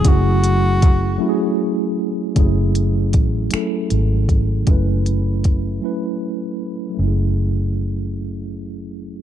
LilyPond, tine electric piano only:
\new Staff \with { instrumentName = "Tine electric piano" } { \time 6/8 \key fis \minor \tempo 4. = 52 <fis gis a cis' e' gis'>4 r8 <fis a cis' e' fis' gis'>4 r8 | <fis a cis' e' gis'>4 r8 <fis a cis' e' a'>4 r8 | <fis a cis' e' b'>4 r8 <fis a cis' e' b'>4 r8 | <fis a cis' e' gis'>2. | }